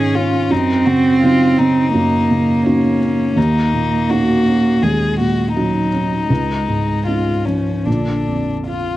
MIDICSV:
0, 0, Header, 1, 4, 480
1, 0, Start_track
1, 0, Tempo, 714286
1, 343, Time_signature, 4, 2, 24, 8
1, 2263, Tempo, 731707
1, 4183, Tempo, 789474
1, 5809, End_track
2, 0, Start_track
2, 0, Title_t, "Violin"
2, 0, Program_c, 0, 40
2, 0, Note_on_c, 0, 68, 48
2, 101, Note_on_c, 0, 65, 50
2, 111, Note_off_c, 0, 68, 0
2, 340, Note_on_c, 0, 63, 44
2, 350, Note_off_c, 0, 65, 0
2, 577, Note_on_c, 0, 66, 47
2, 587, Note_off_c, 0, 63, 0
2, 815, Note_off_c, 0, 66, 0
2, 819, Note_on_c, 0, 65, 51
2, 1060, Note_on_c, 0, 63, 48
2, 1070, Note_off_c, 0, 65, 0
2, 1785, Note_off_c, 0, 63, 0
2, 1792, Note_on_c, 0, 61, 44
2, 2264, Note_on_c, 0, 63, 48
2, 2274, Note_off_c, 0, 61, 0
2, 2742, Note_on_c, 0, 66, 51
2, 2752, Note_off_c, 0, 63, 0
2, 3219, Note_on_c, 0, 68, 46
2, 3229, Note_off_c, 0, 66, 0
2, 3458, Note_off_c, 0, 68, 0
2, 3463, Note_on_c, 0, 66, 42
2, 3694, Note_off_c, 0, 66, 0
2, 3698, Note_on_c, 0, 63, 42
2, 4633, Note_off_c, 0, 63, 0
2, 4650, Note_on_c, 0, 65, 36
2, 4888, Note_on_c, 0, 61, 34
2, 4897, Note_off_c, 0, 65, 0
2, 5131, Note_on_c, 0, 62, 32
2, 5140, Note_off_c, 0, 61, 0
2, 5571, Note_off_c, 0, 62, 0
2, 5624, Note_on_c, 0, 65, 37
2, 5809, Note_off_c, 0, 65, 0
2, 5809, End_track
3, 0, Start_track
3, 0, Title_t, "Felt piano"
3, 0, Program_c, 1, 0
3, 0, Control_c, 1, 64, 127
3, 0, Note_on_c, 1, 44, 42
3, 0, Note_on_c, 1, 51, 35
3, 0, Note_on_c, 1, 61, 35
3, 0, Note_on_c, 1, 63, 37
3, 82, Note_off_c, 1, 61, 0
3, 83, Note_off_c, 1, 63, 0
3, 105, Note_on_c, 1, 61, 38
3, 317, Note_off_c, 1, 44, 0
3, 339, Note_on_c, 1, 42, 46
3, 344, Note_off_c, 1, 61, 0
3, 355, Control_c, 1, 64, 0
3, 356, Note_off_c, 1, 51, 0
3, 458, Control_c, 1, 64, 127
3, 576, Note_on_c, 1, 49, 30
3, 815, Note_off_c, 1, 49, 0
3, 825, Note_on_c, 1, 49, 35
3, 827, Note_on_c, 1, 63, 36
3, 829, Note_on_c, 1, 54, 38
3, 1041, Note_off_c, 1, 49, 0
3, 1043, Note_off_c, 1, 63, 0
3, 1044, Note_off_c, 1, 54, 0
3, 1067, Note_on_c, 1, 49, 29
3, 1276, Note_off_c, 1, 42, 0
3, 1304, Note_on_c, 1, 42, 41
3, 1452, Note_off_c, 1, 49, 0
3, 1551, Note_on_c, 1, 49, 32
3, 1785, Note_on_c, 1, 61, 33
3, 1785, Note_on_c, 1, 63, 33
3, 1788, Note_on_c, 1, 66, 37
3, 1932, Note_off_c, 1, 49, 0
3, 2000, Note_off_c, 1, 61, 0
3, 2000, Note_off_c, 1, 63, 0
3, 2002, Note_off_c, 1, 66, 0
3, 2025, Note_on_c, 1, 61, 35
3, 2236, Note_off_c, 1, 42, 0
3, 2259, Note_on_c, 1, 39, 45
3, 2264, Note_off_c, 1, 61, 0
3, 2275, Control_c, 1, 64, 0
3, 2389, Control_c, 1, 64, 127
3, 2499, Note_on_c, 1, 46, 31
3, 2741, Note_on_c, 1, 61, 33
3, 2741, Note_on_c, 1, 63, 32
3, 2744, Note_on_c, 1, 66, 35
3, 2883, Note_off_c, 1, 46, 0
3, 2956, Note_off_c, 1, 61, 0
3, 2956, Note_off_c, 1, 63, 0
3, 2957, Note_off_c, 1, 66, 0
3, 2985, Note_on_c, 1, 61, 32
3, 3189, Note_off_c, 1, 39, 0
3, 3219, Note_on_c, 1, 39, 40
3, 3364, Note_off_c, 1, 61, 0
3, 3457, Note_on_c, 1, 46, 31
3, 3700, Note_on_c, 1, 61, 27
3, 3705, Note_on_c, 1, 63, 30
3, 3705, Note_on_c, 1, 66, 30
3, 3842, Note_off_c, 1, 46, 0
3, 3916, Note_off_c, 1, 61, 0
3, 3919, Note_off_c, 1, 63, 0
3, 3919, Note_off_c, 1, 66, 0
3, 3941, Note_on_c, 1, 61, 31
3, 4158, Note_off_c, 1, 39, 0
3, 4184, Note_off_c, 1, 61, 0
3, 4185, Note_on_c, 1, 37, 39
3, 4195, Control_c, 1, 64, 0
3, 4301, Control_c, 1, 64, 127
3, 4420, Note_on_c, 1, 44, 25
3, 4658, Note_on_c, 1, 61, 27
3, 4660, Note_on_c, 1, 63, 28
3, 4663, Note_on_c, 1, 65, 30
3, 4798, Note_off_c, 1, 44, 0
3, 4872, Note_off_c, 1, 61, 0
3, 4874, Note_off_c, 1, 63, 0
3, 4875, Note_off_c, 1, 65, 0
3, 4894, Note_on_c, 1, 61, 23
3, 5114, Note_off_c, 1, 37, 0
3, 5135, Note_on_c, 1, 34, 35
3, 5138, Note_off_c, 1, 61, 0
3, 5151, Control_c, 1, 64, 0
3, 5241, Control_c, 1, 64, 127
3, 5383, Note_on_c, 1, 41, 25
3, 5626, Note_on_c, 1, 65, 27
3, 5769, Note_off_c, 1, 41, 0
3, 5809, Note_off_c, 1, 34, 0
3, 5809, Note_off_c, 1, 65, 0
3, 5809, End_track
4, 0, Start_track
4, 0, Title_t, "Cello"
4, 0, Program_c, 2, 42
4, 0, Note_on_c, 2, 61, 75
4, 351, Note_on_c, 2, 60, 79
4, 361, Note_off_c, 2, 61, 0
4, 1301, Note_off_c, 2, 60, 0
4, 1305, Note_on_c, 2, 58, 67
4, 2244, Note_off_c, 2, 58, 0
4, 2267, Note_on_c, 2, 58, 73
4, 3222, Note_on_c, 2, 56, 58
4, 3232, Note_off_c, 2, 58, 0
4, 3694, Note_off_c, 2, 56, 0
4, 3698, Note_on_c, 2, 54, 54
4, 4173, Note_off_c, 2, 54, 0
4, 4185, Note_on_c, 2, 56, 59
4, 4893, Note_on_c, 2, 53, 46
4, 4902, Note_off_c, 2, 56, 0
4, 5135, Note_on_c, 2, 50, 40
4, 5145, Note_off_c, 2, 53, 0
4, 5622, Note_off_c, 2, 50, 0
4, 5809, End_track
0, 0, End_of_file